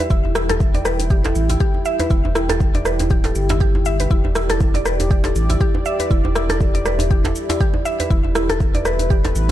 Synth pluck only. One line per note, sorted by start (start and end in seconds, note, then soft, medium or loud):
0.10 0.18 E4 medium
0.35 0.49 E4 medium
0.50 0.59 A4 loud
0.75 0.85 D5 medium
0.85 0.98 B4 medium
1.10 1.18 G4 medium
1.25 1.34 A4 medium
1.50 1.59 E4 medium
1.60 1.73 G4 loud
1.86 1.98 E5 loud
2.00 2.10 B4 medium
2.10 2.18 E4 medium
2.36 2.49 E4 medium
2.50 2.59 A4 medium
2.75 2.85 D5 medium
2.86 2.98 B4 medium
3.11 3.18 G4 medium
3.25 3.35 A4 medium
3.50 3.60 E4 medium
3.61 3.73 G4 loud
3.86 3.98 E5 loud
4.00 4.10 B4 medium
4.11 4.18 E4 medium
4.36 4.49 E4 medium
4.50 4.60 A4 loud
4.75 4.85 D5 medium
4.86 4.98 B4 medium
5.11 5.18 G4 medium
5.25 5.35 A4 medium
5.50 5.59 E4 medium
5.61 5.73 G4 loud
5.86 5.98 E5 loud
6.00 6.10 B4 medium
6.11 6.18 E4 medium
6.36 6.49 E4 medium
6.50 6.59 A4 loud
6.75 6.85 D5 medium
6.86 6.98 B4 medium
7.11 7.18 G4 medium
7.25 7.34 A4 medium
7.50 7.59 E4 medium
7.60 7.73 G4 loud
7.85 7.98 E5 loud
8.00 8.10 B4 medium
8.10 8.18 E4 medium
8.35 8.49 E4 medium
8.49 8.59 A4 loud
8.74 8.85 D5 medium
8.85 8.98 B4 medium
9.10 9.18 G4 medium
9.24 9.34 A4 medium